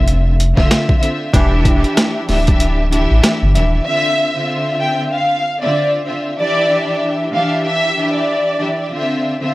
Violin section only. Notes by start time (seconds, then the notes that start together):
3.84 E5
4.80 G5
5.12 F5
5.62 D5
6.38 D5
7.32 F5
7.65 E5
8.14 D5